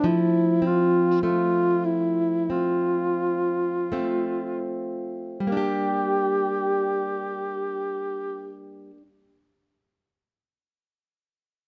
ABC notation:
X:1
M:4/4
L:1/8
Q:1/4=39
K:Gdor
V:1 name="Duduk"
E F F E F3 z | G8 |]
V:2 name="Steel-string acoustic guitar"
F, C A,2 C2 [A,CF]2 | [G,B,DG]8 |]